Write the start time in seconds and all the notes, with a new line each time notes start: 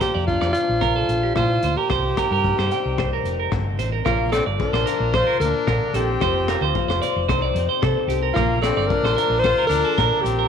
Already playing: A#2 A#3
0.00 F4 G4 C5, kick, cross-stick, closed hi-hat
0.15 F2 D5
0.27 D4 F4, kick
0.41 F2 D5, cross-stick
0.53 F3 F4, closed hi-hat
0.57 D4
0.69 A#1
0.81 A#4, kick, cross-stick
0.96 A4
1.09 A#1 D4, closed hi-hat
1.23 G4
1.35 A2 A#2 F4 C5, kick, cross-stick
1.63 D2 A#2 C5, closed hi-hat
1.77 G4 A#4
1.90 C2 C3 C5, kick, cross-stick
2.17 D#4 A#4, kick, cross-stick, closed hi-hat
2.31 G2 A#4
2.44 D#4, kick
2.58 G2 C5, cross-stick
2.71 G3 C4 G5, closed hi-hat
2.85 C2
2.98 C5, kick, cross-stick
3.13 A#4
3.23 F1 D#4, closed hi-hat
3.40 A#4
3.52 G1 D3, muted clean electric guitar stroke, kick, cross-stick
3.78 A1 C3 C5, closed hi-hat
3.92 A#4
4.05 A#1 A#2 A#3 F4 A#4, kick, cross-stick
4.32 C4 D4 A4 D5, cross-stick, closed hi-hat
4.46 G1 D5
4.60 F3 D4 A#4, kick
4.73 A#1 C5, cross-stick
4.86 F4 A#4, closed hi-hat
5.00 A#1
5.14 F4 C5, muted steel-string acoustic guitar stroke, kick, cross-stick
5.27 A#4
5.40 D2 A#2 D4 A#4, closed hi-hat
5.67 A#2 D3 A#4, kick, cross-stick
5.94 A#1 D#3 C4 G4 A4, closed hi-hat
6.21 F1 F3 C5, kick, cross-stick
6.48 F4 A#4, cross-stick, closed hi-hat
6.61 D2 C5
6.75 F4, kick
6.88 F1 C5, cross-stick
7.02 C5 D5, closed hi-hat
7.16 F1
7.28 C2 C3 C4 D#4 G4 C5, kick, cross-stick
7.33 C5
7.42 D5
7.55 F2 D#4, closed hi-hat
7.69 C5
7.82 C3 C4 A4, kick, cross-stick
8.08 C2 G4, closed hi-hat
8.23 A#4
8.34 A#1 A#2 F4 A#4, kick, cross-stick
8.38 A#3
8.61 C4 D4 A4 D5, cross-stick, closed hi-hat
8.77 G1 D5
8.87 F3 A#4, kick
8.91 D4
9.03 A#1 C5, cross-stick
9.16 F4 A#4, closed hi-hat
9.30 A#1
9.39 C5
9.43 F4 A#4 C5, kick, cross-stick
9.58 A#4
9.67 D2 D4 A#4
9.72 F3, closed hi-hat
9.85 A4
9.98 A#2 D3 A#4, kick, cross-stick
10.21 A#1 D#3 C4 G4
10.26 closed hi-hat
10.39 A#4